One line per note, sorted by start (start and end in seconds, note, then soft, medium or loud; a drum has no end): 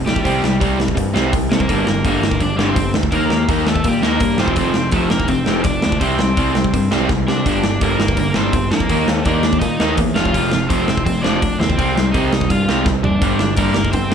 0.06 0.23 A#1 loud
0.06 0.23 F2 medium
0.06 0.24 C3 medium
0.06 0.58 G3 medium
0.06 0.57 G4 medium
0.06 snare loud
0.16 kick medium
0.25 0.42 C2 medium
0.25 0.42 C3 medium
0.25 0.42 G3 medium
0.25 0.42 C4 loud
0.25 kick medium
0.25 open hi-hat medium
0.42 0.59 C2 medium
0.42 0.59 C3 medium
0.42 0.60 G3 medium
0.42 snare loud
0.61 0.94 C2 medium
0.61 0.78 C3 loud
0.61 0.78 G3 loud
0.61 0.78 C4 loud
0.61 kick loud
0.61 open hi-hat medium
0.79 0.94 C3 medium
0.79 0.94 G3 medium
0.79 snare loud
0.88 kick medium
0.95 1.14 G2 medium
0.95 1.12 C3 medium
0.95 1.13 G3 medium
0.95 kick medium
0.95 open hi-hat medium
1.14 1.31 C2 medium
1.14 1.31 C3 medium
1.14 1.32 G3 loud
1.14 1.32 C4 loud
1.14 snare loud
1.33 1.50 C2 medium
1.33 1.49 C3 medium
1.33 1.49 G3 medium
1.33 kick loud
1.33 open hi-hat medium
1.51 1.68 C3 medium
1.51 1.68 G3 medium
1.51 2.01 A#3 medium
1.51 2.03 A#4 medium
1.51 snare loud
1.60 kick medium
1.69 1.85 G1 medium
1.69 1.86 G2 medium
1.69 1.86 D3 medium
1.69 1.87 G3 medium
1.69 kick medium
1.69 open hi-hat medium
1.86 2.03 G1 medium
1.86 2.03 G2 medium
1.86 2.04 D3 loud
1.86 snare loud
2.04 2.21 G1 medium
2.04 2.22 G2 loud
2.04 2.22 D3 medium
2.04 2.23 G3 loud
2.04 2.40 A#3 medium
2.04 kick loud
2.04 open hi-hat medium
2.10 2.41 A#4 medium
2.22 2.39 G1 loud
2.22 2.40 G2 medium
2.22 2.40 D3 medium
2.22 snare loud
2.31 kick medium
2.40 2.56 G1 loud
2.40 2.57 G2 medium
2.40 2.58 D3 medium
2.40 2.56 D4 medium
2.40 2.58 D5 loud
2.40 kick medium
2.40 open hi-hat soft
2.56 2.75 G1 medium
2.56 2.76 G2 medium
2.56 2.76 D3 loud
2.56 2.76 G3 medium
2.56 2.91 C4 medium
2.56 2.92 C5 medium
2.56 snare loud
2.76 2.93 G1 medium
2.76 2.93 G2 medium
2.76 2.93 D3 medium
2.76 kick loud
2.76 open hi-hat medium
2.94 3.11 D2 medium
2.94 3.11 G2 medium
2.94 3.12 D3 medium
2.94 snare loud
3.03 kick medium
3.12 3.29 D#2 medium
3.12 3.30 D#3 medium
3.12 3.46 A#3 medium
3.12 3.30 A#3 medium
3.12 3.30 D#4 medium
3.12 3.47 A#4 medium
3.12 kick medium
3.12 open hi-hat soft
3.29 3.47 D#2 medium
3.29 3.48 D#3 medium
3.29 3.48 A#3 medium
3.29 snare loud
3.48 3.82 D#2 medium
3.48 3.66 D#3 loud
3.48 3.66 A#3 medium
3.48 3.67 D#4 loud
3.48 kick loud
3.48 open hi-hat medium
3.67 3.84 D#3 medium
3.67 3.85 A3 medium
3.67 3.84 A#3 medium
3.67 3.87 A4 medium
3.67 snare loud
3.75 kick medium
3.84 4.01 A#2 loud
3.84 4.01 D#3 medium
3.84 4.03 G3 medium
3.84 4.02 A#3 medium
3.84 kick medium
3.84 open hi-hat medium
3.88 4.04 G4 medium
4.01 4.19 D#2 medium
4.01 4.19 D#3 medium
4.01 4.37 A#3 medium
4.01 4.20 A#3 loud
4.01 4.20 D#4 loud
4.01 4.40 A#4 medium
4.01 snare loud
4.20 4.38 G2 loud
4.20 4.37 D#3 medium
4.20 4.38 A#3 medium
4.20 kick loud
4.20 open hi-hat medium
4.38 4.56 F1 loud
4.38 4.56 F2 loud
4.38 4.56 C3 loud
4.38 4.56 F3 loud
4.38 4.90 C4 medium
4.38 4.90 C5 medium
4.38 snare loud
4.48 kick medium
4.56 4.73 F1 medium
4.56 4.74 F2 medium
4.56 4.75 C3 medium
4.56 4.75 F3 loud
4.56 kick medium
4.56 open hi-hat medium
4.74 4.91 F1 medium
4.74 4.91 F2 medium
4.74 4.92 C3 medium
4.74 snare loud
4.91 5.10 F1 loud
4.91 5.09 F2 loud
4.91 5.10 C3 loud
4.91 5.10 F3 loud
4.91 5.10 A3 medium
4.91 5.10 A4 medium
4.91 kick loud
4.91 open hi-hat medium
5.10 5.28 F1 medium
5.10 5.27 F2 medium
5.10 5.28 C3 medium
5.10 5.28 A#3 medium
5.10 5.29 A#4 medium
5.10 snare loud
5.20 kick medium
5.28 5.46 F1 loud
5.28 5.46 F2 medium
5.28 5.46 C3 medium
5.28 5.62 C4 medium
5.28 5.64 C5 loud
5.28 kick medium
5.28 open hi-hat medium
5.46 5.64 F1 medium
5.46 5.64 F2 loud
5.46 5.64 C3 loud
5.46 5.65 F3 loud
5.46 snare loud
5.64 5.82 F1 loud
5.64 5.82 F2 medium
5.64 5.82 C3 medium
5.64 5.98 D4 medium
5.64 5.99 D5 loud
5.64 kick loud
5.64 open hi-hat medium
5.82 6.00 D2 medium
5.82 6.00 F2 medium
5.82 5.99 C3 medium
5.82 snare loud
5.92 kick medium
5.99 6.18 C2 medium
5.99 6.18 C3 medium
5.99 6.18 G3 medium
5.99 7.05 C4 medium
5.99 6.19 C4 medium
5.99 7.05 C5 medium
5.99 kick medium
5.99 open hi-hat medium
6.19 6.36 C2 medium
6.19 6.36 C3 medium
6.19 6.36 G3 medium
6.19 snare loud
6.37 6.70 C2 medium
6.37 6.54 C3 medium
6.37 6.54 G3 loud
6.37 6.54 C4 loud
6.37 kick loud
6.37 open hi-hat medium
6.55 6.72 C3 medium
6.55 6.72 G3 medium
6.55 snare loud
6.64 kick medium
6.73 6.90 G2 loud
6.73 6.90 C3 medium
6.73 6.90 G3 medium
6.73 kick medium
6.73 open hi-hat medium
6.91 7.08 C2 medium
6.91 7.08 C3 medium
6.91 7.09 G3 loud
6.91 7.09 C4 medium
6.91 snare loud
7.09 7.26 C2 loud
7.09 7.26 C3 medium
7.09 7.26 G3 medium
7.09 kick loud
7.09 snare medium
7.28 7.45 C3 medium
7.28 7.44 C3 medium
7.28 7.44 G3 medium
7.28 7.78 D4 medium
7.28 7.84 D5 medium
7.28 snare medium
7.46 7.62 G1 medium
7.46 7.62 G2 medium
7.46 7.63 D3 medium
7.46 7.63 G3 medium
7.46 kick loud
7.46 open hi-hat medium
7.63 7.80 G1 medium
7.63 7.80 G2 medium
7.63 7.80 D3 medium
7.63 snare loud
7.81 7.98 G1 medium
7.81 7.98 G2 loud
7.81 7.99 D3 loud
7.81 7.99 G3 loud
7.81 8.16 A#3 medium
7.81 8.18 A#4 medium
7.81 kick loud
7.81 open hi-hat medium
7.99 8.16 G1 loud
7.99 8.16 G2 medium
7.99 8.16 D3 medium
7.99 snare loud
8.08 kick medium
8.17 8.34 G1 loud
8.17 8.34 G2 medium
8.17 8.34 D3 loud
8.17 8.34 A#3 medium
8.17 8.37 A#4 medium
8.17 kick medium
8.17 open hi-hat medium
8.34 8.52 G1 medium
8.34 8.53 G2 loud
8.34 8.53 D3 medium
8.34 8.53 G3 loud
8.34 8.69 C4 medium
8.34 8.69 C5 loud
8.34 snare loud
8.53 8.70 G1 medium
8.53 8.70 G2 medium
8.53 8.70 D3 medium
8.53 kick loud
8.53 open hi-hat medium
8.71 8.88 F2 medium
8.71 8.89 G2 medium
8.71 8.89 D3 medium
8.71 9.22 A#3 medium
8.71 9.12 A#4 medium
8.71 snare loud
8.80 kick medium
8.89 9.06 D#2 medium
8.89 9.07 D#3 medium
8.89 9.07 A#3 medium
8.89 9.08 D#4 medium
8.89 kick medium
8.89 open hi-hat medium
9.07 9.24 D#2 medium
9.07 9.25 D#3 medium
9.07 9.25 A#3 medium
9.07 snare loud
9.12 9.27 A4 medium
9.25 9.59 D#2 medium
9.25 9.42 D#3 medium
9.25 9.43 A#3 loud
9.25 9.59 D4 medium
9.25 9.44 D#4 loud
9.25 9.59 D5 loud
9.25 kick loud
9.25 open hi-hat soft
9.43 9.60 D#3 medium
9.43 9.60 A#3 medium
9.43 snare loud
9.53 kick medium
9.59 9.78 A#2 loud
9.59 9.78 D#3 medium
9.59 9.78 A#3 medium
9.59 9.94 D#4 medium
9.59 9.95 D#5 loud
9.59 kick medium
9.59 open hi-hat medium
9.80 9.97 D#2 medium
9.80 9.97 D#3 medium
9.80 9.97 A#3 medium
9.80 9.97 D#4 loud
9.80 snare loud
9.97 10.14 E2 loud
9.97 10.15 D#3 medium
9.97 10.15 A#3 medium
9.97 kick loud
9.97 open hi-hat medium
10.16 10.33 F1 medium
10.16 10.33 F2 loud
10.16 10.33 C3 loud
10.16 10.33 F3 loud
10.16 10.67 F4 medium
10.16 10.72 F5 loud
10.16 snare loud
10.25 kick medium
10.34 10.51 F1 medium
10.34 10.51 F2 medium
10.34 10.51 C3 medium
10.34 10.52 F3 loud
10.34 kick medium
10.34 open hi-hat medium
10.52 10.70 F1 medium
10.52 10.68 F2 medium
10.52 10.68 C3 medium
10.52 snare loud
10.69 10.87 F1 medium
10.69 10.87 F2 loud
10.69 10.87 C3 loud
10.69 10.87 F3 loud
10.69 11.03 C4 medium
10.69 11.03 C5 loud
10.69 kick loud
10.69 open hi-hat medium
10.88 11.05 F1 medium
10.88 11.05 F2 medium
10.88 11.05 C3 medium
10.88 snare loud
10.97 kick medium
11.06 11.23 F1 loud
11.06 11.22 F2 medium
11.06 11.23 C3 medium
11.06 11.22 C4 medium
11.06 11.25 C5 loud
11.06 kick medium
11.06 open hi-hat medium
11.22 11.41 F1 loud
11.22 11.40 F2 medium
11.22 11.41 C3 loud
11.22 11.41 F3 loud
11.22 11.57 D4 medium
11.22 11.57 D5 loud
11.22 snare loud
11.41 11.59 F1 medium
11.41 11.58 F2 medium
11.41 11.59 C3 medium
11.41 kick loud
11.41 open hi-hat medium
11.59 11.76 D#2 medium
11.59 11.76 F2 medium
11.59 11.76 C3 loud
11.59 12.11 C4 medium
11.59 12.16 C5 medium
11.59 snare loud
11.70 kick medium
11.77 11.95 C2 medium
11.77 11.95 C3 medium
11.77 11.95 G3 medium
11.77 11.96 C4 loud
11.77 kick medium
11.77 open hi-hat soft
11.95 12.12 C2 medium
11.95 12.13 C3 medium
11.95 12.13 G3 medium
11.95 snare loud
12.12 12.48 C2 medium
12.12 12.31 C3 medium
12.12 12.30 G3 loud
12.12 12.32 C4 loud
12.12 12.47 D#4 medium
12.12 12.51 D#5 medium
12.12 kick loud
12.12 open hi-hat medium
12.32 12.49 C3 medium
12.32 12.48 G3 medium
12.32 snare loud
12.41 kick medium
12.50 12.65 G2 loud
12.50 12.66 C3 medium
12.50 12.67 G3 medium
12.50 12.85 F4 medium
12.50 12.85 F5 medium
12.50 kick medium
12.50 open hi-hat medium
12.65 12.84 C2 medium
12.65 12.85 C3 loud
12.65 12.85 G3 loud
12.65 12.86 C4 loud
12.65 snare loud
12.85 13.03 C2 loud
12.85 13.02 C3 medium
12.85 13.03 G3 medium
12.85 kick loud
12.85 snare medium
13.03 13.20 F#1 medium
13.03 13.20 C3 medium
13.03 13.21 G3 medium
13.03 13.55 D4 medium
13.03 13.55 D5 medium
13.03 floor tom medium
13.22 13.37 G1 medium
13.22 13.39 G2 medium
13.22 13.39 D3 medium
13.22 13.40 G3 medium
13.22 kick loud
13.22 open hi-hat medium
13.38 13.56 G1 medium
13.38 13.56 G2 medium
13.38 13.57 D3 medium
13.38 snare loud
13.57 13.75 G1 medium
13.57 13.74 G2 medium
13.57 13.74 D3 medium
13.57 13.76 G3 loud
13.57 13.92 A#3 medium
13.57 13.91 A#4 loud
13.57 kick loud
13.57 open hi-hat medium
13.74 13.93 G1 medium
13.74 13.92 G2 medium
13.74 13.93 D3 medium
13.74 snare loud
13.85 kick medium
13.92 14.10 G1 loud
13.92 14.10 G2 medium
13.92 14.10 D3 medium
13.92 14.14 C4 medium
13.92 14.14 C5 loud
13.92 kick medium
13.92 open hi-hat medium
14.11 14.14 G1 medium
14.11 14.14 G2 medium
14.11 14.14 D3 medium